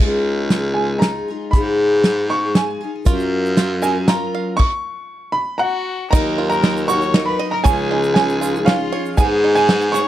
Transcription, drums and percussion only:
0.00 kick medium
0.50 snare medium
0.50 closed hi-hat soft
1.02 snare medium
1.02 closed hi-hat medium
1.53 kick medium
1.53 closed hi-hat medium
2.04 snare medium
2.04 closed hi-hat soft
2.55 snare medium
2.55 closed hi-hat medium
3.05 kick loud
3.05 closed hi-hat medium
3.05 shaker medium
3.19 shaker soft
3.46 shaker soft
3.57 snare medium
3.57 closed hi-hat medium
3.57 shaker soft
3.83 shaker medium
4.08 snare medium
4.08 closed hi-hat medium
4.59 kick medium
4.59 crash medium
6.12 kick loud
6.12 crash medium
6.12 shaker medium
6.52 shaker soft
6.63 snare medium
6.63 ride medium
6.77 shaker soft
6.89 shaker medium
7.02 shaker soft
7.14 snare medium
7.14 ride medium
7.39 ride medium
7.65 kick loud
7.65 ride medium
7.65 shaker loud
8.03 shaker soft
8.16 snare medium
8.16 ride medium
8.29 shaker soft
8.42 shaker medium
8.55 shaker soft
8.67 snare medium
8.67 ride medium
8.92 ride medium
9.05 shaker soft
9.18 kick loud
9.18 ride medium
9.18 shaker medium
9.56 shaker soft
9.69 snare medium
9.69 ride medium
9.81 shaker soft
9.95 shaker medium

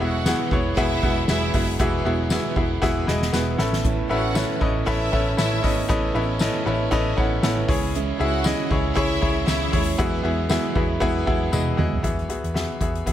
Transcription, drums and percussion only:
0.00 ride medium
0.14 ride soft
0.25 snare loud
0.25 ride medium
0.25 tambourine medium
0.39 ride soft
0.51 kick medium
0.51 ride medium
0.65 ride soft
0.77 kick medium
0.77 ride medium
0.91 ride soft
1.02 kick medium
1.02 ride medium
1.17 ride soft
1.28 snare loud
1.28 ride medium
1.28 tambourine medium
1.43 ride soft
1.54 kick medium
1.54 open hi-hat medium
1.54 ride medium
1.68 ride soft
1.79 kick loud
1.79 hi-hat pedal medium
1.79 ride medium
1.94 ride soft
2.05 ride medium
2.20 ride soft
2.30 snare loud
2.30 ride medium
2.30 tambourine medium
2.44 ride soft
2.56 kick medium
2.56 ride soft
2.71 ride soft
2.82 kick medium
2.82 snare medium
3.08 snare medium
3.22 snare medium
3.33 snare medium
3.33 tambourine medium
3.59 snare loud
3.73 snare medium
3.84 kick loud
3.84 hi-hat pedal medium
3.84 ride medium
4.10 ride medium
4.25 ride soft
4.35 snare loud
4.35 tambourine loud
4.61 kick loud
4.61 ride medium
4.76 ride soft
4.87 kick medium
5.13 kick medium
5.13 ride medium
5.28 ride soft
5.38 snare loud
5.38 ride medium
5.38 tambourine medium
5.53 ride soft
5.64 kick loud
5.64 snare soft
5.64 open hi-hat medium
5.64 ride medium
5.78 ride soft
5.89 kick loud
5.89 hi-hat pedal medium
5.89 ride medium
6.15 ride medium
6.30 ride soft
6.39 snare loud
6.39 ride medium
6.39 tambourine medium
6.55 ride soft
6.67 ride medium
6.80 ride soft
6.92 kick medium
6.92 ride medium
7.06 ride soft
7.18 kick medium
7.18 ride medium
7.32 ride soft
7.43 snare loud
7.43 ride medium
7.43 tambourine medium
7.69 kick loud
7.69 snare soft
7.69 open hi-hat medium
7.69 ride medium
7.83 ride soft
7.95 hi-hat pedal medium
7.95 ride medium
8.09 ride soft
8.20 ride medium
8.35 ride soft
8.44 snare loud
8.44 ride medium
8.44 tambourine medium
8.59 ride soft
8.71 kick loud
8.71 ride medium
8.85 ride soft
8.97 kick medium
8.97 ride medium
9.11 ride soft
9.22 kick medium
9.22 ride medium
9.37 ride soft
9.47 snare loud
9.47 ride medium
9.47 tambourine medium
9.62 ride soft
9.73 kick medium
9.73 open hi-hat medium
9.73 ride medium
9.88 ride soft
9.99 kick loud
9.99 hi-hat pedal medium
9.99 ride medium
10.14 ride soft
10.24 ride medium
10.39 ride soft
10.49 snare loud
10.49 ride medium
10.49 tambourine medium
10.75 kick medium
10.75 ride soft
10.90 ride soft
11.01 kick medium
11.01 ride medium
11.27 kick medium
11.27 ride medium
11.42 ride soft
11.53 high tom medium
11.53 tambourine medium
11.78 mid tom loud
11.93 floor tom medium
12.04 kick medium
12.04 closed hi-hat medium
12.19 closed hi-hat soft
12.30 closed hi-hat medium
12.44 closed hi-hat soft
12.55 snare medium
12.81 kick medium
12.81 closed hi-hat soft
12.95 closed hi-hat soft
13.06 kick medium
13.06 closed hi-hat medium

